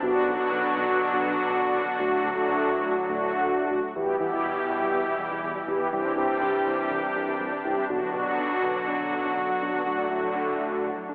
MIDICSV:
0, 0, Header, 1, 5, 480
1, 0, Start_track
1, 0, Key_signature, 1, "minor"
1, 0, Tempo, 491803
1, 25, Time_signature, 4, 2, 24, 8
1, 10880, End_track
2, 0, Start_track
2, 0, Title_t, "Analog polysynth"
2, 0, Program_c, 0, 90
2, 25, Note_on_c, 0, 59, 88
2, 25, Note_on_c, 0, 62, 83
2, 26, Note_on_c, 0, 66, 101
2, 316, Note_off_c, 0, 59, 0
2, 316, Note_off_c, 0, 62, 0
2, 316, Note_off_c, 0, 66, 0
2, 385, Note_on_c, 0, 59, 89
2, 385, Note_on_c, 0, 62, 81
2, 385, Note_on_c, 0, 66, 95
2, 967, Note_off_c, 0, 59, 0
2, 967, Note_off_c, 0, 62, 0
2, 967, Note_off_c, 0, 66, 0
2, 1104, Note_on_c, 0, 62, 79
2, 1104, Note_on_c, 0, 66, 99
2, 1105, Note_on_c, 0, 59, 85
2, 1784, Note_off_c, 0, 59, 0
2, 1784, Note_off_c, 0, 62, 0
2, 1784, Note_off_c, 0, 66, 0
2, 1944, Note_on_c, 0, 57, 87
2, 1944, Note_on_c, 0, 66, 99
2, 1945, Note_on_c, 0, 62, 83
2, 2235, Note_off_c, 0, 66, 0
2, 2236, Note_off_c, 0, 57, 0
2, 2236, Note_off_c, 0, 62, 0
2, 2305, Note_on_c, 0, 57, 85
2, 2305, Note_on_c, 0, 62, 81
2, 2306, Note_on_c, 0, 66, 98
2, 2887, Note_off_c, 0, 57, 0
2, 2887, Note_off_c, 0, 62, 0
2, 2887, Note_off_c, 0, 66, 0
2, 3024, Note_on_c, 0, 62, 81
2, 3024, Note_on_c, 0, 66, 97
2, 3025, Note_on_c, 0, 57, 86
2, 3703, Note_off_c, 0, 62, 0
2, 3704, Note_off_c, 0, 57, 0
2, 3704, Note_off_c, 0, 66, 0
2, 3863, Note_on_c, 0, 59, 86
2, 3863, Note_on_c, 0, 64, 81
2, 3863, Note_on_c, 0, 67, 92
2, 4058, Note_off_c, 0, 59, 0
2, 4058, Note_off_c, 0, 64, 0
2, 4058, Note_off_c, 0, 67, 0
2, 4103, Note_on_c, 0, 64, 74
2, 4104, Note_on_c, 0, 59, 82
2, 4104, Note_on_c, 0, 67, 89
2, 4880, Note_off_c, 0, 59, 0
2, 4880, Note_off_c, 0, 64, 0
2, 4880, Note_off_c, 0, 67, 0
2, 5545, Note_on_c, 0, 59, 89
2, 5545, Note_on_c, 0, 64, 79
2, 5545, Note_on_c, 0, 67, 97
2, 5739, Note_off_c, 0, 59, 0
2, 5739, Note_off_c, 0, 64, 0
2, 5739, Note_off_c, 0, 67, 0
2, 5783, Note_on_c, 0, 67, 94
2, 5784, Note_on_c, 0, 60, 88
2, 5784, Note_on_c, 0, 64, 82
2, 5978, Note_off_c, 0, 64, 0
2, 5978, Note_off_c, 0, 67, 0
2, 5979, Note_off_c, 0, 60, 0
2, 6024, Note_on_c, 0, 60, 83
2, 6024, Note_on_c, 0, 64, 74
2, 6024, Note_on_c, 0, 67, 90
2, 6800, Note_off_c, 0, 60, 0
2, 6800, Note_off_c, 0, 64, 0
2, 6800, Note_off_c, 0, 67, 0
2, 7465, Note_on_c, 0, 60, 87
2, 7465, Note_on_c, 0, 64, 81
2, 7465, Note_on_c, 0, 67, 99
2, 7659, Note_off_c, 0, 60, 0
2, 7659, Note_off_c, 0, 64, 0
2, 7659, Note_off_c, 0, 67, 0
2, 7706, Note_on_c, 0, 59, 89
2, 7706, Note_on_c, 0, 62, 80
2, 7706, Note_on_c, 0, 66, 93
2, 7899, Note_off_c, 0, 59, 0
2, 7899, Note_off_c, 0, 62, 0
2, 7899, Note_off_c, 0, 66, 0
2, 7946, Note_on_c, 0, 59, 82
2, 7946, Note_on_c, 0, 62, 76
2, 7946, Note_on_c, 0, 66, 94
2, 8721, Note_off_c, 0, 59, 0
2, 8721, Note_off_c, 0, 62, 0
2, 8721, Note_off_c, 0, 66, 0
2, 9384, Note_on_c, 0, 59, 85
2, 9385, Note_on_c, 0, 62, 80
2, 9385, Note_on_c, 0, 66, 95
2, 9578, Note_off_c, 0, 59, 0
2, 9579, Note_off_c, 0, 62, 0
2, 9579, Note_off_c, 0, 66, 0
2, 9623, Note_on_c, 0, 57, 86
2, 9624, Note_on_c, 0, 62, 80
2, 9624, Note_on_c, 0, 66, 96
2, 9818, Note_off_c, 0, 57, 0
2, 9818, Note_off_c, 0, 62, 0
2, 9818, Note_off_c, 0, 66, 0
2, 9863, Note_on_c, 0, 57, 80
2, 9863, Note_on_c, 0, 66, 92
2, 9864, Note_on_c, 0, 62, 75
2, 10640, Note_off_c, 0, 57, 0
2, 10640, Note_off_c, 0, 62, 0
2, 10640, Note_off_c, 0, 66, 0
2, 10880, End_track
3, 0, Start_track
3, 0, Title_t, "Synth pluck"
3, 0, Program_c, 1, 84
3, 3865, Note_on_c, 1, 52, 94
3, 3963, Note_off_c, 1, 52, 0
3, 3985, Note_on_c, 1, 55, 74
3, 4082, Note_off_c, 1, 55, 0
3, 4105, Note_on_c, 1, 64, 86
3, 4203, Note_off_c, 1, 64, 0
3, 4226, Note_on_c, 1, 52, 70
3, 4323, Note_off_c, 1, 52, 0
3, 4466, Note_on_c, 1, 64, 76
3, 4563, Note_off_c, 1, 64, 0
3, 4586, Note_on_c, 1, 52, 79
3, 4683, Note_off_c, 1, 52, 0
3, 4706, Note_on_c, 1, 55, 73
3, 4803, Note_off_c, 1, 55, 0
3, 4825, Note_on_c, 1, 64, 97
3, 4923, Note_off_c, 1, 64, 0
3, 4946, Note_on_c, 1, 52, 73
3, 5043, Note_off_c, 1, 52, 0
3, 5065, Note_on_c, 1, 55, 82
3, 5163, Note_off_c, 1, 55, 0
3, 5186, Note_on_c, 1, 64, 84
3, 5283, Note_off_c, 1, 64, 0
3, 5306, Note_on_c, 1, 52, 83
3, 5403, Note_off_c, 1, 52, 0
3, 5425, Note_on_c, 1, 55, 79
3, 5522, Note_off_c, 1, 55, 0
3, 5545, Note_on_c, 1, 64, 81
3, 5643, Note_off_c, 1, 64, 0
3, 5664, Note_on_c, 1, 52, 73
3, 5762, Note_off_c, 1, 52, 0
3, 5785, Note_on_c, 1, 55, 95
3, 5882, Note_off_c, 1, 55, 0
3, 5905, Note_on_c, 1, 62, 81
3, 6003, Note_off_c, 1, 62, 0
3, 6025, Note_on_c, 1, 52, 76
3, 6122, Note_off_c, 1, 52, 0
3, 6146, Note_on_c, 1, 55, 73
3, 6243, Note_off_c, 1, 55, 0
3, 6264, Note_on_c, 1, 62, 89
3, 6362, Note_off_c, 1, 62, 0
3, 6385, Note_on_c, 1, 52, 71
3, 6483, Note_off_c, 1, 52, 0
3, 6625, Note_on_c, 1, 62, 78
3, 6722, Note_off_c, 1, 62, 0
3, 6744, Note_on_c, 1, 52, 88
3, 6842, Note_off_c, 1, 52, 0
3, 6864, Note_on_c, 1, 55, 77
3, 6962, Note_off_c, 1, 55, 0
3, 6985, Note_on_c, 1, 62, 86
3, 7082, Note_off_c, 1, 62, 0
3, 7225, Note_on_c, 1, 55, 87
3, 7322, Note_off_c, 1, 55, 0
3, 7345, Note_on_c, 1, 62, 83
3, 7443, Note_off_c, 1, 62, 0
3, 7586, Note_on_c, 1, 55, 74
3, 7683, Note_off_c, 1, 55, 0
3, 7706, Note_on_c, 1, 50, 93
3, 7803, Note_off_c, 1, 50, 0
3, 7824, Note_on_c, 1, 54, 75
3, 7922, Note_off_c, 1, 54, 0
3, 7944, Note_on_c, 1, 62, 86
3, 8042, Note_off_c, 1, 62, 0
3, 8064, Note_on_c, 1, 50, 72
3, 8162, Note_off_c, 1, 50, 0
3, 8305, Note_on_c, 1, 62, 79
3, 8403, Note_off_c, 1, 62, 0
3, 8426, Note_on_c, 1, 50, 76
3, 8523, Note_off_c, 1, 50, 0
3, 8546, Note_on_c, 1, 54, 73
3, 8643, Note_off_c, 1, 54, 0
3, 8666, Note_on_c, 1, 62, 94
3, 8763, Note_off_c, 1, 62, 0
3, 8785, Note_on_c, 1, 50, 75
3, 8883, Note_off_c, 1, 50, 0
3, 8905, Note_on_c, 1, 54, 78
3, 9003, Note_off_c, 1, 54, 0
3, 9026, Note_on_c, 1, 62, 85
3, 9123, Note_off_c, 1, 62, 0
3, 9145, Note_on_c, 1, 50, 81
3, 9242, Note_off_c, 1, 50, 0
3, 9265, Note_on_c, 1, 54, 79
3, 9362, Note_off_c, 1, 54, 0
3, 9386, Note_on_c, 1, 62, 84
3, 9483, Note_off_c, 1, 62, 0
3, 9506, Note_on_c, 1, 50, 72
3, 9603, Note_off_c, 1, 50, 0
3, 9626, Note_on_c, 1, 54, 97
3, 9723, Note_off_c, 1, 54, 0
3, 9747, Note_on_c, 1, 62, 81
3, 9843, Note_off_c, 1, 62, 0
3, 9866, Note_on_c, 1, 50, 81
3, 9963, Note_off_c, 1, 50, 0
3, 9986, Note_on_c, 1, 54, 76
3, 10083, Note_off_c, 1, 54, 0
3, 10105, Note_on_c, 1, 62, 93
3, 10203, Note_off_c, 1, 62, 0
3, 10226, Note_on_c, 1, 50, 70
3, 10323, Note_off_c, 1, 50, 0
3, 10466, Note_on_c, 1, 62, 81
3, 10563, Note_off_c, 1, 62, 0
3, 10586, Note_on_c, 1, 50, 90
3, 10683, Note_off_c, 1, 50, 0
3, 10706, Note_on_c, 1, 54, 77
3, 10803, Note_off_c, 1, 54, 0
3, 10826, Note_on_c, 1, 62, 88
3, 10880, Note_off_c, 1, 62, 0
3, 10880, End_track
4, 0, Start_track
4, 0, Title_t, "Analog synth pad"
4, 0, Program_c, 2, 89
4, 0, Note_on_c, 2, 62, 76
4, 25, Note_on_c, 2, 47, 83
4, 25, Note_on_c, 2, 50, 80
4, 25, Note_on_c, 2, 66, 95
4, 26, Note_on_c, 2, 54, 80
4, 1926, Note_off_c, 2, 47, 0
4, 1926, Note_off_c, 2, 54, 0
4, 1945, Note_on_c, 2, 54, 80
4, 1947, Note_on_c, 2, 45, 86
4, 3825, Note_off_c, 2, 62, 0
4, 3827, Note_off_c, 2, 50, 0
4, 3827, Note_off_c, 2, 66, 0
4, 3846, Note_off_c, 2, 54, 0
4, 3847, Note_off_c, 2, 45, 0
4, 3864, Note_on_c, 2, 47, 86
4, 3864, Note_on_c, 2, 55, 77
4, 3864, Note_on_c, 2, 64, 77
4, 3865, Note_on_c, 2, 52, 79
4, 3865, Note_on_c, 2, 67, 93
4, 5765, Note_off_c, 2, 47, 0
4, 5765, Note_off_c, 2, 55, 0
4, 5765, Note_off_c, 2, 64, 0
4, 5766, Note_off_c, 2, 67, 0
4, 5786, Note_on_c, 2, 48, 84
4, 5787, Note_on_c, 2, 55, 76
4, 5787, Note_on_c, 2, 62, 75
4, 5787, Note_on_c, 2, 67, 92
4, 7666, Note_off_c, 2, 52, 0
4, 7686, Note_off_c, 2, 48, 0
4, 7687, Note_off_c, 2, 55, 0
4, 7687, Note_off_c, 2, 67, 0
4, 7705, Note_on_c, 2, 66, 95
4, 7706, Note_on_c, 2, 47, 84
4, 7706, Note_on_c, 2, 50, 76
4, 7707, Note_on_c, 2, 54, 75
4, 9606, Note_off_c, 2, 47, 0
4, 9606, Note_off_c, 2, 50, 0
4, 9627, Note_on_c, 2, 45, 85
4, 9627, Note_on_c, 2, 50, 78
4, 10880, Note_off_c, 2, 45, 0
4, 10880, Note_off_c, 2, 50, 0
4, 10880, Note_off_c, 2, 54, 0
4, 10880, Note_off_c, 2, 62, 0
4, 10880, Note_off_c, 2, 66, 0
4, 10880, End_track
5, 0, Start_track
5, 0, Title_t, "Analog synth bass"
5, 0, Program_c, 3, 38
5, 26, Note_on_c, 3, 35, 112
5, 123, Note_off_c, 3, 35, 0
5, 265, Note_on_c, 3, 35, 110
5, 363, Note_off_c, 3, 35, 0
5, 505, Note_on_c, 3, 35, 110
5, 602, Note_off_c, 3, 35, 0
5, 744, Note_on_c, 3, 35, 102
5, 842, Note_off_c, 3, 35, 0
5, 1106, Note_on_c, 3, 35, 101
5, 1203, Note_off_c, 3, 35, 0
5, 1225, Note_on_c, 3, 35, 99
5, 1322, Note_off_c, 3, 35, 0
5, 1466, Note_on_c, 3, 35, 96
5, 1563, Note_off_c, 3, 35, 0
5, 1705, Note_on_c, 3, 30, 92
5, 1802, Note_off_c, 3, 30, 0
5, 1946, Note_on_c, 3, 38, 116
5, 2043, Note_off_c, 3, 38, 0
5, 2185, Note_on_c, 3, 38, 97
5, 2282, Note_off_c, 3, 38, 0
5, 2423, Note_on_c, 3, 38, 113
5, 2521, Note_off_c, 3, 38, 0
5, 2665, Note_on_c, 3, 38, 105
5, 2762, Note_off_c, 3, 38, 0
5, 3024, Note_on_c, 3, 38, 94
5, 3122, Note_off_c, 3, 38, 0
5, 3145, Note_on_c, 3, 38, 98
5, 3242, Note_off_c, 3, 38, 0
5, 3384, Note_on_c, 3, 38, 97
5, 3482, Note_off_c, 3, 38, 0
5, 3623, Note_on_c, 3, 33, 99
5, 3721, Note_off_c, 3, 33, 0
5, 3864, Note_on_c, 3, 40, 99
5, 3962, Note_off_c, 3, 40, 0
5, 4104, Note_on_c, 3, 52, 91
5, 4202, Note_off_c, 3, 52, 0
5, 4345, Note_on_c, 3, 40, 106
5, 4442, Note_off_c, 3, 40, 0
5, 4585, Note_on_c, 3, 40, 99
5, 4682, Note_off_c, 3, 40, 0
5, 4823, Note_on_c, 3, 40, 102
5, 4921, Note_off_c, 3, 40, 0
5, 5064, Note_on_c, 3, 40, 97
5, 5162, Note_off_c, 3, 40, 0
5, 5185, Note_on_c, 3, 40, 94
5, 5282, Note_off_c, 3, 40, 0
5, 5303, Note_on_c, 3, 40, 98
5, 5401, Note_off_c, 3, 40, 0
5, 5543, Note_on_c, 3, 40, 97
5, 5641, Note_off_c, 3, 40, 0
5, 5783, Note_on_c, 3, 36, 107
5, 5881, Note_off_c, 3, 36, 0
5, 6023, Note_on_c, 3, 48, 99
5, 6121, Note_off_c, 3, 48, 0
5, 6264, Note_on_c, 3, 36, 105
5, 6362, Note_off_c, 3, 36, 0
5, 6505, Note_on_c, 3, 36, 103
5, 6603, Note_off_c, 3, 36, 0
5, 6745, Note_on_c, 3, 36, 104
5, 6842, Note_off_c, 3, 36, 0
5, 6985, Note_on_c, 3, 36, 96
5, 7083, Note_off_c, 3, 36, 0
5, 7105, Note_on_c, 3, 36, 99
5, 7202, Note_off_c, 3, 36, 0
5, 7225, Note_on_c, 3, 36, 103
5, 7323, Note_off_c, 3, 36, 0
5, 7466, Note_on_c, 3, 36, 99
5, 7563, Note_off_c, 3, 36, 0
5, 7705, Note_on_c, 3, 35, 117
5, 7803, Note_off_c, 3, 35, 0
5, 7944, Note_on_c, 3, 47, 90
5, 8042, Note_off_c, 3, 47, 0
5, 8183, Note_on_c, 3, 35, 102
5, 8281, Note_off_c, 3, 35, 0
5, 8425, Note_on_c, 3, 35, 96
5, 8522, Note_off_c, 3, 35, 0
5, 8664, Note_on_c, 3, 35, 96
5, 8762, Note_off_c, 3, 35, 0
5, 8905, Note_on_c, 3, 35, 101
5, 9003, Note_off_c, 3, 35, 0
5, 9025, Note_on_c, 3, 35, 94
5, 9123, Note_off_c, 3, 35, 0
5, 9146, Note_on_c, 3, 35, 108
5, 9243, Note_off_c, 3, 35, 0
5, 9386, Note_on_c, 3, 35, 99
5, 9483, Note_off_c, 3, 35, 0
5, 10880, End_track
0, 0, End_of_file